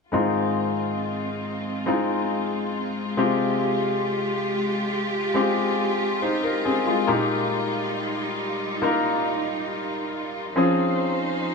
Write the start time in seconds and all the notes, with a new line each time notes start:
0.12 G#2 D#3 G#3 C4 D#4 F4
1.86 G#3 C4 D#4 F4
3.17 C3 G#3 C4 F4 G4
5.34 G#3 C4 F4 G4
6.22 D#4 C5
6.44 A#4
6.65 C4 G#4
6.87 G#3 F4
7.07 A#2 G3 A#3 D#4 F4 G4
8.82 A#3 D#4 F4 A#4
10.56 F3 C4 C#4 D#4 F4 G#4 C5